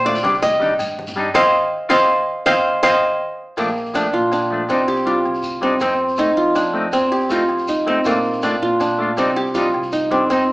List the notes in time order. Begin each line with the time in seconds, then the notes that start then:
Already playing: A#2 C5
0.05 A3 D4 F4 D5, shekere
0.15 low conga, shekere
0.23 C2 G3 D4, muted clean electric guitar stroke, high conga, low agogo
0.34 shekere
0.42 D#5, low conga, low agogo, shekere
0.53 low conga
0.60 G3 D4 D#4, high conga, shekere
0.70 low conga
0.79 G2, low agogo, shekere
0.89 low conga
0.99 high conga
1.07 low conga, shekere
1.16 G3 D4 D#4, low agogo, shekere
1.27 low conga
1.34 F2 C4 D#4 F4 C5 D#5 F5, high conga, low agogo, shekere
1.89 F2 C4 D#4 F4 C5 D#5 F5, high conga, low agogo, shekere
2.46 F2 C4 D#4 F4 C5 D#5 F5, high conga, low agogo, shekere
2.83 F2 C4 D#4 F4 C5 D#5 F5, high conga, low agogo, shekere
3.57 A#1 F3 A3 A#3 D4, low agogo, shekere
3.68 shekere
3.77 shekere
3.86 shekere
3.94 F3 A3 D4, low agogo, shekere
4.13 A#2 F4
4.32 D4, low agogo, shekere
4.50 F3 A3 D4
4.69 C2 C4 D4 D#4, muted clean electric guitar stroke, low agogo, shekere
4.88 G4, low agogo, shekere
4.96 shekere
5.06 G3 D4 F4
5.25 C2, low agogo
5.34 shekere
5.43 shekere
5.61 G3 C4 D4 D#4, low agogo
5.80 F2 C4 D#4, muted clean electric guitar stroke, low agogo, shekere
5.89 shekere
6.08 shekere
6.17 A3 D#4, low agogo, shekere
6.21 D#4
6.37 F3 F4
6.55 D4, low agogo, shekere
6.73 A3 C4 D#4
6.92 F2 C4, low agogo, shekere
7.12 G4, low agogo, shekere
7.21 shekere
7.29 A3 C4 D#4 F4, shekere
7.49 F2, low agogo
7.58 shekere
7.68 D#4, shekere
7.86 A3 C4 D#4, low agogo
8.05 A#1 A3 A#3 D4 F4, low agogo, shekere
8.24 shekere
8.33 shekere
8.42 A3 D4 F4, low agogo, shekere
8.62 A#2 F4
8.80 D4, low agogo, shekere
8.99 A3 D4 F4
9.17 C2 G3 C4 D4 D#4, low agogo, shekere
9.36 G4, low agogo
9.46 shekere
9.55 G3 D4 D#4 F4, shekere
9.74 C2, low agogo
9.83 shekere
9.92 D#4, shekere
10.11 G3 C4 D4, low agogo
10.30 F2 C4 D#4, muted clean electric guitar stroke, low agogo, shekere